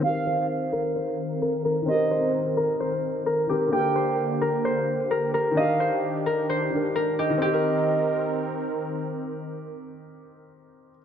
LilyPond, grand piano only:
\new Staff \with { instrumentName = "Grand piano" } { \time 4/4 \key c \minor \tempo 4 = 130 <ees c' g' bes'>1 | <ees c' g' bes'>2.~ <ees c' g' bes'>8 <ees c' g' bes'>8 | <d bes g' bes'>1 | <ees d' g' bes'>2~ <ees d' g' bes'>8 <ees d' g' bes'>4. |
<ees c' g' bes'>1~ | <ees c' g' bes'>1 | }